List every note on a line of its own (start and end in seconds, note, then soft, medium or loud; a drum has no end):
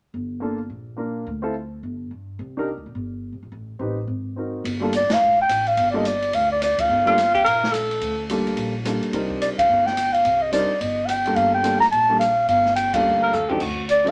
0.14 0.67 G1 medium
0.40 0.57 A#3 medium
0.40 0.57 D4 soft
0.40 0.57 F4 soft
0.40 0.58 A4 medium
0.70 1.23 A#1 medium
0.97 1.26 A#3 soft
0.97 1.26 D4 soft
0.97 1.26 F4 soft
0.97 1.27 A#4 medium
1.27 1.80 D2 medium
1.42 1.53 C4 medium
1.42 1.53 E4 medium
1.42 1.53 F4 medium
1.42 1.53 A4 medium
1.83 2.09 G1 medium
2.11 2.37 G2 medium
2.39 2.74 C2 medium
2.57 2.67 D4 medium
2.57 2.67 D#4 medium
2.57 2.67 G4 medium
2.57 2.68 A#4 medium
2.78 2.85 D2 medium
2.86 2.94 B1 medium
2.95 3.30 G1 medium
3.33 3.42 C2 medium
3.43 3.51 A#1 medium
3.52 3.78 A1 medium
3.79 4.06 A1 medium
3.79 3.95 C4 soft
3.79 3.96 D#4 soft
3.79 3.96 G4 soft
3.79 3.97 B4 medium
4.08 4.61 G#1 medium
4.36 4.65 C4 soft
4.36 4.65 D#4 soft
4.36 4.65 F#4 soft
4.36 4.66 A#4 soft
4.64 4.99 G1 medium
4.64 kick soft
4.64 ride medium
4.80 4.91 G3 medium
4.80 4.92 A#3 medium
4.80 4.91 D4 medium
4.80 4.92 F4 medium
4.80 4.92 A4 medium
4.93 5.15 D5 medium
4.93 hi-hat pedal medium
4.93 ride medium
5.02 5.11 A1 medium
5.10 5.21 F#1 medium
5.10 5.40 F5 medium
5.10 snare medium
5.10 ride medium
5.22 5.47 A#1 medium
5.41 5.69 G5 loud
5.49 5.75 A1 medium
5.49 cross-stick medium
5.49 hi-hat pedal soft
5.49 ride medium
5.67 5.90 F5 medium
5.67 ride soft
5.77 6.30 G1 medium
5.77 kick soft
5.77 ride medium
5.90 6.04 G3 medium
5.90 6.04 A#3 medium
5.90 6.04 D4 medium
5.90 5.98 D5 medium
5.95 6.04 F4 medium
5.95 6.04 A4 medium
5.95 6.08 D#5 medium
6.05 6.36 D5 medium
6.05 hi-hat pedal medium
6.05 ride medium
6.22 ride soft
6.33 6.75 D2 medium
6.33 6.51 F5 medium
6.33 kick soft
6.33 ride medium
6.51 6.61 D5 medium
6.62 6.82 D5 medium
6.62 cross-stick medium
6.62 hi-hat pedal medium
6.62 ride medium
6.78 6.89 D2 medium
6.78 7.91 F5 medium
6.78 kick medium
6.78 ride medium
6.89 7.42 G1 medium
7.05 7.16 G3 medium
7.05 7.16 A#3 medium
7.05 7.16 D4 medium
7.05 7.33 F4 medium
7.05 7.17 F4 medium
7.05 7.17 A4 medium
7.05 ride soft
7.18 snare soft
7.18 hi-hat pedal soft
7.18 ride medium
7.34 7.39 G4 medium
7.34 kick medium
7.34 ride soft
7.44 7.99 A#1 medium
7.44 7.74 A#4 loud
7.44 kick soft
7.44 ride medium
7.64 snare medium
7.72 8.29 A4 medium
7.72 cross-stick medium
7.72 hi-hat pedal soft
7.72 ride medium
7.91 ride soft
8.01 8.54 D2 medium
8.01 kick soft
8.01 ride medium
8.29 8.71 G3 medium
8.29 8.71 A#3 medium
8.29 8.72 D4 medium
8.29 8.72 F4 medium
8.29 8.72 A4 medium
8.29 hi-hat pedal soft
8.29 ride medium
8.47 ride soft
8.57 8.99 A#1 medium
8.57 kick soft
8.57 ride medium
8.85 9.11 G3 medium
8.85 9.13 A#3 medium
8.85 9.12 D4 soft
8.85 9.14 F4 soft
8.85 9.14 A4 medium
8.85 cross-stick medium
8.85 hi-hat pedal medium
8.85 ride medium
9.02 ride soft
9.13 9.55 C2 medium
9.13 9.55 G3 medium
9.13 9.55 C4 soft
9.13 9.55 D4 soft
9.13 9.55 D#4 soft
9.13 9.56 A#4 medium
9.13 kick soft
9.13 ride medium
9.30 kick medium
9.41 9.49 D5 medium
9.41 hi-hat pedal soft
9.41 ride medium
9.58 9.69 C#2 medium
9.58 9.87 F5 medium
9.58 kick medium
9.58 ride medium
9.69 10.22 G1 medium
9.86 10.15 G5 medium
9.86 snare soft
9.97 cross-stick medium
9.97 hi-hat pedal medium
9.97 ride medium
10.13 10.43 F5 medium
10.13 ride soft
10.25 10.67 C2 medium
10.25 kick soft
10.25 ride medium
10.42 10.52 D#5 medium
10.52 10.68 G3 medium
10.52 10.68 C4 medium
10.52 10.69 D4 medium
10.52 10.69 D#4 medium
10.52 10.69 A#4 medium
10.52 10.82 D5 medium
10.52 hi-hat pedal medium
10.52 ride medium
10.71 muted upright bass stroke soft
10.81 11.34 G1 medium
10.81 11.07 D#5 medium
10.81 kick soft
10.81 ride medium
11.06 11.10 F#5 medium
11.06 11.37 G5 medium
11.06 cross-stick medium
11.06 hi-hat pedal medium
11.06 ride medium
11.25 11.61 G3 medium
11.25 11.62 A#3 medium
11.25 11.62 D4 soft
11.25 11.63 F4 medium
11.25 11.63 A4 medium
11.25 ride soft
11.36 11.78 G1 medium
11.36 11.54 F5 medium
11.36 kick soft
11.36 ride medium
11.54 11.80 G5 medium
11.63 11.79 G3 medium
11.63 11.80 A#3 medium
11.63 11.80 D4 medium
11.63 11.80 F4 medium
11.63 11.80 A4 medium
11.63 hi-hat pedal medium
11.63 ride medium
11.80 11.86 A#5 loud
11.80 muted upright bass stroke soft
11.80 snare soft
11.80 ride soft
11.92 12.46 A#1 medium
11.92 12.18 A5 loud
11.92 kick soft
11.92 ride medium
12.09 12.19 G3 medium
12.09 12.19 A#3 medium
12.09 12.20 D4 medium
12.09 12.20 F4 medium
12.09 12.20 A4 medium
12.19 12.46 F5 medium
12.19 cross-stick medium
12.19 hi-hat pedal medium
12.19 ride medium
12.48 13.02 G1 medium
12.48 12.75 F5 medium
12.48 kick soft
12.48 ride medium
12.66 snare soft
12.76 12.95 G5 medium
12.76 hi-hat pedal medium
12.76 ride medium
12.93 13.30 G3 medium
12.93 13.31 A#3 medium
12.93 13.31 D4 medium
12.93 13.31 F4 medium
12.93 13.32 A4 medium
12.93 13.50 F5 medium
12.93 kick medium
12.93 ride medium
13.03 13.57 D2 medium
13.23 13.35 A#4 medium
13.33 13.51 A4 medium
13.33 floor tom soft
13.33 hi-hat pedal medium
13.49 13.60 F#3 medium
13.49 13.60 C4 medium
13.49 13.60 D4 medium
13.49 13.60 D#4 medium
13.49 13.63 G4 medium
13.49 13.60 A4 medium
13.49 floor tom medium
13.60 14.11 D2 medium
13.60 13.84 F#4 medium
13.60 kick medium
13.60 crash medium
13.89 14.11 D5 loud
13.89 hi-hat pedal medium
13.89 ride medium
14.04 14.11 F#3 medium
14.04 14.11 C4 medium
14.04 14.11 D4 medium
14.04 14.11 D#4 medium
14.04 14.11 A4 medium
14.04 ride soft